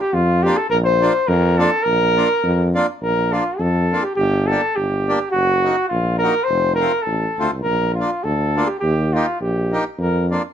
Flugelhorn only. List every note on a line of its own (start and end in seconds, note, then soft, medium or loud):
0.01 0.15 G4 medium
0.14 0.44 F4 loud
0.43 0.58 G4 loud
0.56 0.69 A4 medium
0.70 0.77 A#4 loud
0.84 1.29 C5 loud
1.27 1.59 A#4 medium
1.57 1.85 A4 loud
1.83 2.73 A#4 loud
3.02 3.34 A#4 loud
3.33 3.61 F4 medium
3.59 4.04 A4 medium
4.03 4.15 G4 medium
4.16 4.48 G4 loud
4.46 4.77 A4 medium
4.76 5.30 G4 medium
5.31 5.86 F#4 loud
5.88 6.18 F4 medium
6.18 6.45 A#4 loud
6.44 6.74 C5 loud
6.74 7.04 A#4 loud
7.02 7.49 A4 medium
7.62 7.93 A#4 loud
7.94 8.25 F4 medium
8.23 8.69 A4 loud
8.67 8.79 G4 medium
8.79 9.14 G4 medium
9.13 9.40 F4 medium
9.41 9.82 G4 medium
9.99 10.27 A#4 medium